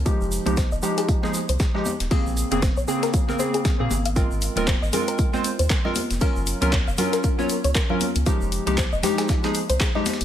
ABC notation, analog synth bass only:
X:1
M:4/4
L:1/16
Q:"Swing 16ths" 1/4=117
K:Fm
V:1 name="Analog synth bass" clef=bass
z F,,, z C,, z F,,, z4 z C,, z3 E,,, | z B,,, z F,,, z B,,, z6 z B,, A,,,2- | A,,, A,,, z E,,, z A,,, z4 z E,, z3 F,,, | z _G,,, z D,, z G,,, z4 z D,, z3 D,, |
z F,,, z C,, z F,,, z4 z C,, z3 E,,, |]